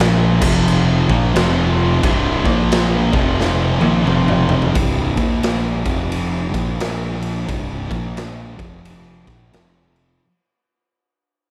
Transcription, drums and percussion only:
0.00 snare, crash
0.42 kick, crash
0.68 crash
1.10 kick
1.36 snare, crash
2.03 kick, crash
2.45 kick
2.72 snare, crash
3.13 kick
3.40 snare
3.81 high tom
4.07 mid tom
4.28 mid tom
4.49 floor tom
4.62 floor tom
4.75 kick, ride
5.17 kick, ride
5.43 snare, ride
5.85 kick, ride
6.12 ride
6.54 kick, snare, ride
6.80 snare, ride
7.22 ride
7.49 kick, ride
7.91 kick, ride
8.17 snare, ride
8.59 kick, ride
8.85 ride
9.27 kick, snare, ride
9.53 snare, ride
9.96 ride

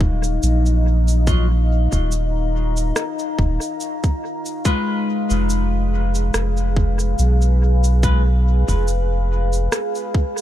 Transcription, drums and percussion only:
0.01 kick
0.24 cabasa
0.43 cabasa
0.66 cabasa
1.08 cabasa
1.27 kick, cabasa
1.92 kick, cabasa
2.12 cabasa
2.77 cabasa
2.96 cross-stick, cabasa
3.19 cabasa
3.38 kick
3.61 cabasa
3.81 cabasa
4.04 kick, cabasa
4.46 cabasa
4.65 kick, cabasa
5.30 cabasa
5.50 cabasa
6.15 cabasa
6.34 cross-stick, cabasa
6.57 cabasa
6.76 kick
6.99 cabasa
7.19 cabasa
7.42 cabasa
7.84 cabasa
8.03 kick, cabasa
8.68 kick, cabasa
8.88 cabasa
9.53 cabasa
9.72 cross-stick, cabasa
9.95 cabasa
10.14 kick
10.38 cabasa

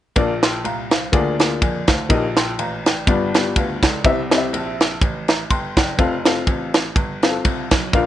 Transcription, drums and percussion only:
0.16 kick, ride bell
0.43 snare, ride bell
0.65 ride bell
0.91 snare, ride bell
1.13 kick, ride bell
1.40 snare, ride bell
1.62 kick, ride bell
1.88 kick, snare, ride bell
2.10 kick, ride bell
2.37 snare, ride bell
2.59 ride bell
2.86 snare, ride bell
3.07 kick, ride bell
3.34 snare, ride bell
3.56 kick, ride bell
3.83 kick, snare, ride bell
4.04 kick, ride bell
4.31 snare, ride bell
4.54 ride bell
4.81 snare, ride bell
5.01 kick, ride bell
5.28 snare, ride bell
5.50 kick, ride bell
5.77 kick, snare, ride bell
5.99 kick, ride bell
6.25 snare, ride bell
6.47 kick, ride bell
6.74 snare, ride bell
6.96 kick, ride bell
7.23 snare, ride bell
7.45 kick, ride bell
7.71 kick, snare, ride bell
7.93 kick, ride bell

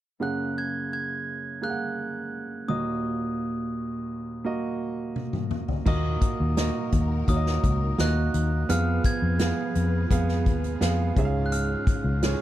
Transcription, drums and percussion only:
5.16 high tom
5.33 mid tom
5.51 mid tom
5.68 floor tom
5.86 kick, crash
6.22 kick, closed hi-hat
6.57 snare, closed hi-hat
6.92 kick, closed hi-hat
7.28 kick, closed hi-hat
7.46 snare
7.64 kick, closed hi-hat
7.99 snare, closed hi-hat
8.34 closed hi-hat
8.69 closed hi-hat
9.04 kick, closed hi-hat
9.39 snare, closed hi-hat
9.75 closed hi-hat
10.11 kick, closed hi-hat
10.28 snare
10.46 kick, closed hi-hat
10.64 closed hi-hat
10.81 snare, closed hi-hat
11.17 kick, closed hi-hat
11.52 closed hi-hat
11.87 kick, closed hi-hat
12.23 snare, closed hi-hat

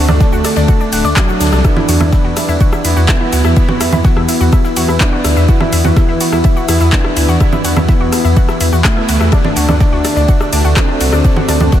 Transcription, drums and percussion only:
0.09 cross-stick, low conga, shaker
0.20 kick, snare, ride, shaker
0.33 shaker
0.44 cross-stick, snare, open hi-hat, ride, shaker
0.56 snare, ride, shaker
0.68 kick, ride, shaker
0.81 shaker
0.92 open hi-hat, ride, shaker
1.05 shaker
1.17 kick, cross-stick, clap, ride, shaker
1.29 shaker
1.40 snare, open hi-hat, ride, shaker
1.46 snare, ride
1.52 cross-stick, snare, ride, shaker
1.58 snare, ride
1.64 kick, cross-stick, ride, shaker
1.77 snare, low conga
1.89 open hi-hat, ride, shaker
2.01 cross-stick, low conga, shaker
2.13 kick, snare, ride, shaker
2.24 snare
2.37 cross-stick, snare, open hi-hat, ride, shaker
2.49 shaker
2.61 kick, ride, shaker
2.73 cross-stick, shaker
2.84 open hi-hat, ride, shaker
2.97 shaker
3.07 kick, cross-stick, snare, clap, ride, shaker
3.33 open hi-hat, ride, shaker
3.45 cross-stick, shaker
3.56 kick, ride, shaker
3.69 low conga
3.81 cross-stick, open hi-hat, ride, shaker
3.93 low conga, shaker
4.04 kick, snare, ride, shaker
4.17 cross-stick
4.28 open hi-hat, ride, shaker
4.41 shaker
4.53 kick, cross-stick, ride, shaker
4.64 snare, shaker
4.76 open hi-hat, ride, shaker
4.89 cross-stick, shaker
5.01 kick, snare, clap, shaker
5.24 cross-stick, open hi-hat, ride, shaker
5.37 shaker
5.49 kick, ride, shaker
5.61 cross-stick, snare, low conga
5.73 open hi-hat, ride, shaker
5.85 low conga, shaker
5.97 kick, cross-stick, snare, ride, shaker
6.09 snare
6.20 open hi-hat, ride, shaker
6.33 cross-stick, shaker
6.44 kick, ride, shaker
6.57 shaker
6.68 cross-stick, open hi-hat, ride, shaker
6.81 shaker
6.92 kick, snare, clap, ride, shaker
7.05 cross-stick
7.17 open hi-hat, ride, shaker
7.29 shaker
7.40 kick, cross-stick, ride, shaker
7.53 low conga, shaker
7.64 open hi-hat, ride, shaker
7.77 cross-stick, low conga, shaker
7.88 kick, snare, ride, shaker
8.13 cross-stick, open hi-hat, ride, shaker
8.25 shaker
8.37 kick, ride, shaker
8.49 cross-stick, snare, shaker
8.61 open hi-hat, ride, shaker
8.73 shaker
8.85 kick, cross-stick, snare, clap, ride, shaker
9.09 open hi-hat, ride, shaker
9.21 cross-stick, shaker
9.32 kick, cross-stick, ride, shaker
9.44 snare, low conga
9.56 open hi-hat, ride, shaker
9.69 cross-stick, low conga, shaker
9.81 kick, snare, ride, shaker
9.93 snare
10.04 cross-stick, snare, open hi-hat, ride, shaker
10.17 shaker
10.28 kick, ride, shaker
10.41 cross-stick, shaker
10.53 open hi-hat, ride, shaker
10.65 shaker
10.76 kick, cross-stick, snare, clap, shaker
11.01 open hi-hat, ride, shaker
11.13 cross-stick, shaker
11.25 kick, ride, shaker
11.37 low conga
11.49 cross-stick, open hi-hat, ride, shaker
11.61 low conga, shaker
11.72 kick, snare, ride, shaker

